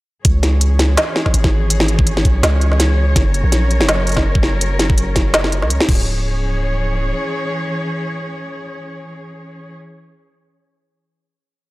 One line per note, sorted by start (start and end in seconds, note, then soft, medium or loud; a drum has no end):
0.25 0.97 C#2 loud
0.25 3.13 E3 medium
0.25 5.84 C#4 medium
0.25 3.13 G#4 medium
0.25 5.84 C#5 medium
0.25 kick loud
0.25 closed hi-hat medium
0.43 snare medium
0.43 closed hi-hat soft
0.61 closed hi-hat medium
0.79 snare medium
0.79 closed hi-hat soft
0.97 snare loud
0.97 closed hi-hat medium
1.16 snare medium
1.26 kick medium
1.26 snare soft
1.34 2.24 G#1 medium
1.34 closed hi-hat medium
1.44 kick loud
1.44 snare medium
1.70 closed hi-hat medium
1.80 snare medium
1.88 closed hi-hat soft
1.99 kick loud
2.07 closed hi-hat medium
2.17 snare medium
2.25 2.42 B1 medium
2.25 kick medium
2.25 closed hi-hat soft
2.43 3.15 C#2 loud
2.43 snare loud
2.43 snare medium
2.43 closed hi-hat medium
2.61 closed hi-hat soft
2.72 snare soft
2.80 snare medium
2.80 closed hi-hat medium
3.16 3.43 F#1 loud
3.16 5.86 F#3 medium
3.16 5.86 A#4 medium
3.16 kick loud
3.16 snare medium
3.16 closed hi-hat medium
3.34 closed hi-hat soft
3.44 3.82 A#1 loud
3.52 snare medium
3.52 closed hi-hat medium
3.71 closed hi-hat soft
3.80 5.64 F#1 medium
3.80 snare medium
3.89 snare loud
3.89 closed hi-hat medium
4.07 closed hi-hat soft
4.09 closed hi-hat soft
4.12 closed hi-hat soft
4.14 kick medium
4.14 snare soft
4.14 snare medium
4.14 closed hi-hat soft
4.35 kick loud
4.43 snare medium
4.61 closed hi-hat medium
4.79 snare medium
4.79 closed hi-hat soft
4.90 kick loud
4.98 closed hi-hat medium
5.16 kick medium
5.16 snare soft
5.16 closed hi-hat soft
5.34 snare loud
5.34 closed hi-hat medium
5.44 snare soft
5.52 closed hi-hat soft
5.62 5.79 C#2 medium
5.62 snare soft
5.70 closed hi-hat medium
5.80 snare medium
5.88 7.12 C#1 loud
5.88 9.73 E3 medium
5.88 9.73 C#4 medium
5.88 9.73 G#4 medium
5.88 9.73 C#5 medium
5.88 kick loud
5.88 crash medium